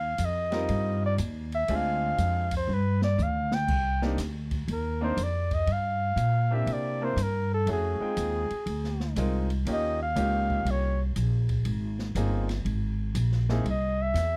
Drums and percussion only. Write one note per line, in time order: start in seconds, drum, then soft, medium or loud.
0.18 hi-hat pedal medium
0.18 ride medium
0.52 snare soft
0.52 ride soft
0.69 ride medium
1.18 hi-hat pedal medium
1.18 ride medium
1.52 ride soft
1.68 ride medium
2.18 hi-hat pedal soft
2.18 ride medium
2.51 kick soft
2.51 ride medium
2.69 high tom soft
3.02 snare medium
3.18 hi-hat pedal medium
3.18 mid tom medium
3.52 snare medium
3.68 kick medium
3.68 crash medium
4.02 snare soft
4.18 snare soft
4.18 hi-hat pedal medium
4.18 ride medium
4.51 kick medium
4.51 ride soft
4.68 ride medium
5.17 hi-hat pedal medium
5.17 ride medium
5.51 kick medium
5.51 ride soft
5.67 ride medium
6.17 hi-hat pedal soft
6.17 ride medium
6.67 ride medium
7.17 hi-hat pedal medium
7.17 ride medium
7.67 ride medium
8.17 hi-hat pedal medium
8.17 ride medium
8.50 ride soft
8.66 ride medium
8.84 snare soft
9.00 snare soft
9.16 hi-hat pedal medium
9.16 ride medium
9.50 ride soft
9.66 ride medium
10.16 hi-hat pedal medium
10.16 ride medium
10.50 kick medium
10.66 ride medium
11.16 hi-hat pedal medium
11.16 ride medium
11.49 kick soft
11.49 ride soft
11.65 ride medium
11.99 snare soft
12.15 hi-hat pedal medium
12.15 ride medium
12.49 snare soft
12.49 ride medium
12.66 ride medium
13.15 hi-hat pedal medium
13.15 ride medium
13.32 snare soft
13.49 snare soft
13.66 ride medium
14.15 snare soft
14.15 hi-hat pedal soft
14.15 ride medium